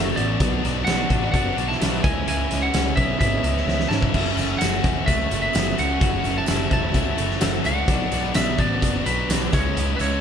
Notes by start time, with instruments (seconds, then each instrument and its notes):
Already playing: picked electric bass F#1, distorted electric guitar F#2 C#3 F#3 A3 C#4 A4, lead electric guitar A3 C#5, grand piano F#4 A4 E5, overdriven electric guitar F#4
0.15 picked electric bass A1, distorted electric guitar F#3 A3 C#4 A4, lead electric guitar B3 D5, grand piano F#4 A4 E5, overdriven electric guitar F#4, closed hi-hat
0.39 picked electric bass B1, distorted electric guitar B2 F#3 B3 D4 F#4, grand piano F#4 B4 D5, kick, closed hi-hat
0.64 picked electric bass B1, distorted electric guitar B3 D4 F#4, grand piano F#4 B4 D5, snare, closed hi-hat
0.84 picked electric bass B1, overdriven electric guitar B2, distorted electric guitar F#3 B3 D4 F#4, grand piano F#4 B4 D5, lead electric guitar F#5, snare, closed hi-hat, tambourine
1.10 picked electric bass A1, distorted electric guitar B2 F#3 B3 D4 F#4, grand piano F#4 B4 D5, kick, closed hi-hat
1.32 picked electric bass F#1, distorted electric guitar F#3 B3 D4, grand piano F#4 B4 D5, lead electric guitar F#5, kick, closed hi-hat
1.36 distorted electric guitar F#4
1.57 picked electric bass B1, distorted electric guitar B2 F#3 B3 D4 F#4, grand piano F#4 B4 D5, closed hi-hat
1.68 lead electric guitar E4 A5
1.72 snare
1.80 picked electric bass B1, distorted electric guitar F#3 B3 D4 F#4, grand piano F#4 B4 D5, snare, closed hi-hat, tambourine
2.03 picked electric bass C#2, distorted electric guitar C#3 E3 G#3 C#4 E4, grand piano E4 B4 C#5, lead electric guitar G#5, kick, closed hi-hat
2.25 picked electric bass C#2, distorted electric guitar C#3 E3 G#3 C#4 E4, lead electric guitar G#5, closed hi-hat
2.50 picked electric bass C#2, overdriven electric guitar E3, distorted electric guitar G#3 C#4 E4, grand piano E4 B4 C#5, snare, closed hi-hat
2.62 lead electric guitar C#4 F#5
2.72 picked electric bass C#2, overdriven electric guitar C#3, distorted electric guitar E3 G#3 C#4 E4, grand piano E4 B4 C#5, snare, closed hi-hat, tambourine
2.96 picked electric bass B1, distorted electric guitar C#3 E3 G#3 C#4 E4, lead electric guitar B3 E5, grand piano E4 B4 C#5, kick, closed hi-hat
3.19 picked electric bass G#1, overdriven electric guitar C#3, distorted electric guitar E3 G#3 C#4 E4, lead electric guitar B3 E5, grand piano E4 B4 C#5, kick, closed hi-hat
3.43 picked electric bass C#2, distorted electric guitar C#3 E3 G#3 C#4 E4, grand piano E4 B4 C#5, closed hi-hat
3.57 snare
3.66 picked electric bass C#2, overdriven electric guitar C#3, distorted electric guitar E3 G#3 C#4 E4, grand piano E4 B4 C#5, snare
3.80 snare
3.89 picked electric bass G#2, distorted electric guitar G#3 C#4 E4, grand piano E4 B4 C#5, lead electric guitar A5, snare
3.93 overdriven electric guitar E3
4.03 kick
4.12 picked electric bass F#1, distorted electric guitar F#2 C#3 F#3 A3 C#4 F#4, grand piano F#4 A4 E5, kick, crash
4.35 picked electric bass F#1, distorted electric guitar F#3 A3 C#4 F#4, grand piano F#4 A4 E5, snare, closed hi-hat, tambourine
4.58 picked electric bass F#1, overdriven electric guitar F#2 C#3, distorted electric guitar F#3 A3 C#4 F#4, grand piano E5, lead electric guitar F#5, snare, closed hi-hat, tambourine
4.63 grand piano F#4 A4
4.83 picked electric bass E1, distorted electric guitar F#2 C#3 F#3 A3 C#4 F#4, grand piano F#4 A4 E5, kick, closed hi-hat
5.06 picked electric bass C#2, overdriven electric guitar C#3, distorted electric guitar F#3 A3 C#4 F#4, grand piano F#4 A4 E5, lead electric guitar E5, kick, closed hi-hat, tambourine
5.30 picked electric bass F#1, distorted electric guitar F#2 C#3 F#3 A3 C#4 F#4, grand piano F#4 A4 E5, closed hi-hat, tambourine
5.42 lead electric guitar B3 E5
5.53 overdriven electric guitar C#3, distorted electric guitar F#3 A3, grand piano F#4, closed hi-hat, tambourine
5.55 picked electric bass F#1, distorted electric guitar C#4 F#4, grand piano A4 E5, snare, tambourine
5.76 picked electric bass C#2, distorted electric guitar F#3 A3 C#4 F#4, grand piano F#4 A4 E5, lead electric guitar F#5, closed hi-hat, tambourine
6.00 picked electric bass F#1, distorted electric guitar F#2 C#3 F#3 A3 C#4 F#4, grand piano F#4 A4 F#5, kick, closed hi-hat
6.23 picked electric bass F#1, distorted electric guitar F#3 A3 C#4 F#4, grand piano F#4 A4 E5, closed hi-hat, tambourine
6.37 lead electric guitar E4 A5
6.46 picked electric bass F#1, overdriven electric guitar F#2 C#3, distorted electric guitar F#3 A3 C#4 F#4, grand piano F#4 A4 E5, snare, closed hi-hat, tambourine
6.70 picked electric bass E1, distorted electric guitar F#2 C#3 F#3 A3 C#4 F#4, lead electric guitar E4 A5, grand piano F#4 A4 E5, kick, closed hi-hat
6.93 picked electric bass C#2, overdriven electric guitar C#3, distorted electric guitar F#3 A3 C#4 F#4, grand piano F#4 A4 E5, kick, closed hi-hat, tambourine
7.16 picked electric bass F#1, distorted electric guitar F#2 C#3 F#3 A3 C#4 F#4, grand piano F#4 A4 E5, closed hi-hat, tambourine
7.31 snare
7.39 picked electric bass F#1, overdriven electric guitar C#3, distorted electric guitar F#3 A3 C#4 F#4, grand piano F#4 A4 E5, snare, closed hi-hat, tambourine
7.62 picked electric bass C#2, distorted electric guitar F#3 A3 C#4 F#4, lead electric guitar D4 F#5, grand piano F#4 A4 E5, closed hi-hat, tambourine
7.87 picked electric bass B1, distorted electric guitar B2 F#3 B3 D4 F#4, grand piano F#4 B4 D5, kick, closed hi-hat
8.11 picked electric bass B1, overdriven electric guitar F#3, distorted electric guitar B3 D4 F#4, grand piano F#4 B4 D5, snare, closed hi-hat, tambourine
8.34 picked electric bass B1, overdriven electric guitar B2, distorted electric guitar F#3 B3 D4 F#4, grand piano F#4 B4 D5, lead electric guitar E5, snare, closed hi-hat, tambourine
8.58 picked electric bass A1, distorted electric guitar B2 F#3 B3 D4 F#4, grand piano F#4 B4 D5, lead electric guitar D5, kick, closed hi-hat
8.80 picked electric bass F#1, overdriven electric guitar B2, distorted electric guitar F#3 B3 D4, grand piano F#4 B4 D5, kick, closed hi-hat, tambourine
8.85 distorted electric guitar F#4
9.03 picked electric bass B1, lead electric guitar F#3 B4, distorted electric guitar B3 D4 F#4, grand piano F#4 B4 D5, closed hi-hat, tambourine
9.07 distorted electric guitar B2 F#3
9.28 picked electric bass B1, overdriven electric guitar B2, distorted electric guitar F#3 B3 D4 F#4, grand piano F#4 B4 D5, snare, closed hi-hat, tambourine
9.52 picked electric bass C#2, distorted electric guitar C#3 E3 G#3 C#4 E4, grand piano E4 B4 C#5, lead electric guitar C#5, kick, closed hi-hat, tambourine
9.76 picked electric bass C#2, distorted electric guitar C#3 E3 G#3 C#4 E4, closed hi-hat
9.96 lead electric guitar G#3 B4, distorted electric guitar E4, grand piano B4, tambourine
10.00 picked electric bass C#2, overdriven electric guitar E3, distorted electric guitar G#3 C#4, grand piano E4 C#5, lead electric guitar C#5, closed hi-hat